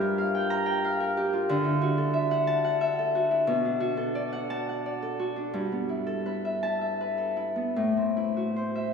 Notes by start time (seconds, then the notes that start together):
Already playing: G2 F4 G4 A4 C5 G5 A5 C6
0.01 A#4
0.18 F5
0.35 G5
0.50 A#5
0.66 G5
0.84 F5
1.00 A#4
1.17 G4
1.33 F4
1.49 D3
1.65 E4
1.81 F#4
1.98 A4
2.14 E5
2.31 F#5
2.47 A5
2.64 F#5
2.81 E5
2.99 A4
3.15 F#4
3.31 E4
3.47 B2
3.65 D4
3.80 F#4
3.97 A4
4.15 D5
4.32 F#5
4.50 A5
4.69 F#5
4.86 D5
5.02 A4
5.19 F#4
5.36 D4
5.54 G2
5.72 B3
5.89 E4
6.07 A4
6.26 B4
6.45 E5
6.63 A5
6.81 E5
7.01 B4
7.18 A4
7.37 E4
7.56 B3
7.76 A2
7.97 C4
8.17 E4
8.37 F#4
8.56 C5
8.75 E5